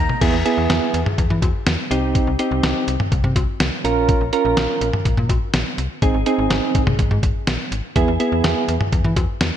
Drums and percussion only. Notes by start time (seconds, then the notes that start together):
0.09 mid tom
0.21 kick, closed hi-hat, crash
0.46 closed hi-hat
0.70 snare, closed hi-hat
0.94 closed hi-hat
1.06 mid tom
1.18 kick, closed hi-hat
1.30 mid tom
1.42 kick, closed hi-hat, cowbell
1.67 snare, closed hi-hat
1.91 closed hi-hat
2.15 kick, closed hi-hat
2.39 closed hi-hat
2.63 snare, closed hi-hat
2.88 closed hi-hat
3.00 mid tom
3.12 kick, closed hi-hat
3.24 mid tom
3.36 kick, closed hi-hat, cowbell
3.60 snare, closed hi-hat
3.85 closed hi-hat
4.09 kick, closed hi-hat
4.33 closed hi-hat
4.57 snare, closed hi-hat
4.81 closed hi-hat
4.93 mid tom
5.05 kick, closed hi-hat
5.17 mid tom
5.29 kick, closed hi-hat, cowbell
5.54 snare, closed hi-hat
5.78 closed hi-hat
6.02 kick, closed hi-hat
6.26 closed hi-hat
6.50 snare, closed hi-hat
6.75 kick, closed hi-hat
6.87 mid tom
6.99 kick, closed hi-hat
7.11 mid tom
7.23 kick, closed hi-hat
7.47 snare, closed hi-hat
7.72 closed hi-hat
7.96 kick, closed hi-hat
8.20 closed hi-hat
8.44 snare, closed hi-hat
8.68 closed hi-hat
8.81 mid tom
8.92 kick, closed hi-hat
9.04 mid tom
9.16 kick, closed hi-hat, cowbell
9.41 snare, closed hi-hat